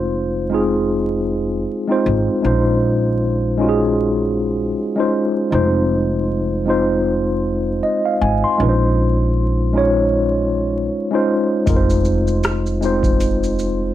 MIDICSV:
0, 0, Header, 1, 4, 480
1, 0, Start_track
1, 0, Key_signature, -5, "minor"
1, 0, Tempo, 769231
1, 1526, Time_signature, 4, 2, 24, 8
1, 8700, End_track
2, 0, Start_track
2, 0, Title_t, "Tine electric piano"
2, 0, Program_c, 0, 4
2, 0, Control_c, 0, 64, 127
2, 0, Note_on_c, 0, 56, 80
2, 0, Note_on_c, 0, 60, 71
2, 0, Note_on_c, 0, 63, 71
2, 0, Note_on_c, 0, 65, 73
2, 0, Note_on_c, 0, 72, 86
2, 84, Note_off_c, 0, 56, 0
2, 88, Note_off_c, 0, 60, 0
2, 91, Note_off_c, 0, 63, 0
2, 95, Note_off_c, 0, 65, 0
2, 98, Note_off_c, 0, 72, 0
2, 312, Note_on_c, 0, 56, 85
2, 318, Note_on_c, 0, 60, 72
2, 324, Note_on_c, 0, 63, 74
2, 332, Note_on_c, 0, 65, 74
2, 339, Note_on_c, 0, 68, 92
2, 899, Note_off_c, 0, 56, 0
2, 903, Note_off_c, 0, 60, 0
2, 906, Note_off_c, 0, 63, 0
2, 909, Note_off_c, 0, 65, 0
2, 913, Note_off_c, 0, 68, 0
2, 1170, Note_on_c, 0, 56, 83
2, 1177, Note_on_c, 0, 60, 82
2, 1183, Note_on_c, 0, 63, 75
2, 1191, Note_on_c, 0, 65, 74
2, 1198, Note_on_c, 0, 72, 93
2, 1420, Note_off_c, 0, 56, 0
2, 1423, Note_off_c, 0, 60, 0
2, 1426, Note_off_c, 0, 63, 0
2, 1430, Note_off_c, 0, 65, 0
2, 1434, Note_off_c, 0, 72, 0
2, 1512, Note_on_c, 0, 56, 79
2, 1519, Note_on_c, 0, 61, 75
2, 1526, Note_on_c, 0, 63, 75
2, 1532, Control_c, 0, 64, 0
2, 1532, Note_on_c, 0, 65, 70
2, 1539, Note_on_c, 0, 72, 94
2, 1642, Control_c, 0, 64, 127
2, 2006, Note_off_c, 0, 56, 0
2, 2009, Note_off_c, 0, 61, 0
2, 2013, Note_off_c, 0, 63, 0
2, 2016, Note_off_c, 0, 65, 0
2, 2019, Note_off_c, 0, 72, 0
2, 2232, Note_on_c, 0, 56, 88
2, 2240, Note_on_c, 0, 61, 78
2, 2247, Note_on_c, 0, 63, 74
2, 2253, Note_on_c, 0, 65, 76
2, 2261, Note_on_c, 0, 66, 70
2, 2300, Note_off_c, 0, 66, 0
2, 2300, Note_on_c, 0, 68, 96
2, 2820, Note_off_c, 0, 56, 0
2, 2823, Note_off_c, 0, 61, 0
2, 2827, Note_off_c, 0, 63, 0
2, 2830, Note_off_c, 0, 65, 0
2, 2854, Note_off_c, 0, 68, 0
2, 3094, Note_on_c, 0, 56, 87
2, 3101, Note_on_c, 0, 61, 72
2, 3107, Note_on_c, 0, 63, 79
2, 3114, Note_on_c, 0, 65, 75
2, 3120, Note_on_c, 0, 72, 92
2, 3342, Note_off_c, 0, 56, 0
2, 3345, Note_off_c, 0, 61, 0
2, 3348, Note_off_c, 0, 63, 0
2, 3352, Note_off_c, 0, 65, 0
2, 3355, Note_off_c, 0, 72, 0
2, 3435, Note_on_c, 0, 56, 77
2, 3441, Note_on_c, 0, 60, 71
2, 3449, Note_on_c, 0, 63, 74
2, 3454, Control_c, 0, 64, 0
2, 3455, Note_on_c, 0, 65, 68
2, 3462, Note_on_c, 0, 72, 85
2, 3575, Control_c, 0, 64, 127
2, 3927, Note_off_c, 0, 56, 0
2, 3930, Note_off_c, 0, 60, 0
2, 3934, Note_off_c, 0, 63, 0
2, 3937, Note_off_c, 0, 65, 0
2, 3941, Note_off_c, 0, 72, 0
2, 4153, Note_on_c, 0, 56, 82
2, 4160, Note_on_c, 0, 60, 77
2, 4166, Note_on_c, 0, 63, 76
2, 4174, Note_on_c, 0, 65, 83
2, 4180, Note_on_c, 0, 72, 94
2, 4740, Note_off_c, 0, 56, 0
2, 4744, Note_off_c, 0, 60, 0
2, 4747, Note_off_c, 0, 63, 0
2, 4751, Note_off_c, 0, 65, 0
2, 4753, Note_off_c, 0, 72, 0
2, 4886, Note_on_c, 0, 75, 66
2, 5018, Note_off_c, 0, 75, 0
2, 5026, Note_on_c, 0, 77, 70
2, 5121, Note_off_c, 0, 77, 0
2, 5126, Note_on_c, 0, 80, 72
2, 5258, Note_off_c, 0, 80, 0
2, 5266, Note_on_c, 0, 84, 66
2, 5353, Note_on_c, 0, 56, 82
2, 5362, Note_on_c, 0, 61, 75
2, 5367, Note_on_c, 0, 63, 73
2, 5372, Control_c, 0, 64, 0
2, 5375, Note_on_c, 0, 65, 73
2, 5381, Note_on_c, 0, 71, 69
2, 5420, Note_off_c, 0, 71, 0
2, 5422, Note_on_c, 0, 72, 87
2, 5482, Control_c, 0, 64, 127
2, 5493, Note_off_c, 0, 84, 0
2, 5846, Note_off_c, 0, 56, 0
2, 5850, Note_off_c, 0, 61, 0
2, 5853, Note_off_c, 0, 63, 0
2, 5857, Note_off_c, 0, 65, 0
2, 5881, Note_off_c, 0, 72, 0
2, 6074, Note_on_c, 0, 56, 83
2, 6080, Note_on_c, 0, 61, 76
2, 6086, Note_on_c, 0, 63, 76
2, 6094, Note_on_c, 0, 65, 77
2, 6100, Note_on_c, 0, 73, 97
2, 6660, Note_off_c, 0, 56, 0
2, 6664, Note_off_c, 0, 61, 0
2, 6667, Note_off_c, 0, 63, 0
2, 6670, Note_off_c, 0, 65, 0
2, 6674, Note_off_c, 0, 73, 0
2, 6932, Note_on_c, 0, 56, 82
2, 6938, Note_on_c, 0, 61, 76
2, 6945, Note_on_c, 0, 63, 75
2, 6952, Note_on_c, 0, 65, 83
2, 6958, Note_on_c, 0, 72, 92
2, 7181, Note_off_c, 0, 56, 0
2, 7184, Note_off_c, 0, 61, 0
2, 7187, Note_off_c, 0, 63, 0
2, 7191, Note_off_c, 0, 65, 0
2, 7194, Note_off_c, 0, 72, 0
2, 7273, Note_on_c, 0, 56, 84
2, 7280, Note_on_c, 0, 60, 71
2, 7286, Note_on_c, 0, 63, 69
2, 7292, Note_on_c, 0, 65, 76
2, 7293, Control_c, 0, 64, 0
2, 7300, Note_on_c, 0, 70, 75
2, 7340, Note_off_c, 0, 70, 0
2, 7341, Note_on_c, 0, 72, 90
2, 7385, Control_c, 0, 64, 127
2, 7766, Note_off_c, 0, 56, 0
2, 7770, Note_off_c, 0, 60, 0
2, 7773, Note_off_c, 0, 63, 0
2, 7776, Note_off_c, 0, 65, 0
2, 7800, Note_off_c, 0, 72, 0
2, 7994, Note_on_c, 0, 56, 87
2, 8001, Note_on_c, 0, 60, 79
2, 8008, Note_on_c, 0, 63, 77
2, 8014, Note_on_c, 0, 65, 74
2, 8021, Note_on_c, 0, 72, 90
2, 8580, Note_off_c, 0, 56, 0
2, 8584, Note_off_c, 0, 60, 0
2, 8588, Note_off_c, 0, 63, 0
2, 8591, Note_off_c, 0, 65, 0
2, 8594, Note_off_c, 0, 72, 0
2, 8700, End_track
3, 0, Start_track
3, 0, Title_t, "Upright bass"
3, 0, Program_c, 1, 32
3, 0, Note_on_c, 1, 29, 93
3, 1021, Note_off_c, 1, 29, 0
3, 1286, Note_on_c, 1, 32, 98
3, 1409, Note_off_c, 1, 32, 0
3, 1526, Note_on_c, 1, 34, 98
3, 2941, Note_off_c, 1, 34, 0
3, 3446, Note_on_c, 1, 29, 98
3, 4861, Note_off_c, 1, 29, 0
3, 5126, Note_on_c, 1, 32, 101
3, 5250, Note_off_c, 1, 32, 0
3, 5365, Note_on_c, 1, 34, 101
3, 6780, Note_off_c, 1, 34, 0
3, 7282, Note_on_c, 1, 29, 99
3, 8699, Note_off_c, 1, 29, 0
3, 8700, End_track
4, 0, Start_track
4, 0, Title_t, "Drums"
4, 7282, Note_on_c, 9, 36, 116
4, 7284, Note_on_c, 9, 42, 65
4, 7284, Note_on_c, 9, 82, 67
4, 7345, Note_off_c, 9, 36, 0
4, 7346, Note_off_c, 9, 42, 0
4, 7346, Note_off_c, 9, 82, 0
4, 7425, Note_on_c, 9, 82, 52
4, 7488, Note_off_c, 9, 82, 0
4, 7519, Note_on_c, 9, 82, 43
4, 7581, Note_off_c, 9, 82, 0
4, 7659, Note_on_c, 9, 82, 50
4, 7722, Note_off_c, 9, 82, 0
4, 7760, Note_on_c, 9, 42, 53
4, 7760, Note_on_c, 9, 82, 57
4, 7767, Note_on_c, 9, 37, 100
4, 7823, Note_off_c, 9, 42, 0
4, 7823, Note_off_c, 9, 82, 0
4, 7830, Note_off_c, 9, 37, 0
4, 7902, Note_on_c, 9, 82, 46
4, 7964, Note_off_c, 9, 82, 0
4, 8003, Note_on_c, 9, 82, 41
4, 8066, Note_off_c, 9, 82, 0
4, 8131, Note_on_c, 9, 36, 94
4, 8138, Note_on_c, 9, 82, 42
4, 8194, Note_off_c, 9, 36, 0
4, 8201, Note_off_c, 9, 82, 0
4, 8240, Note_on_c, 9, 42, 57
4, 8240, Note_on_c, 9, 82, 61
4, 8302, Note_off_c, 9, 42, 0
4, 8302, Note_off_c, 9, 82, 0
4, 8385, Note_on_c, 9, 82, 47
4, 8447, Note_off_c, 9, 82, 0
4, 8481, Note_on_c, 9, 82, 49
4, 8543, Note_off_c, 9, 82, 0
4, 8700, End_track
0, 0, End_of_file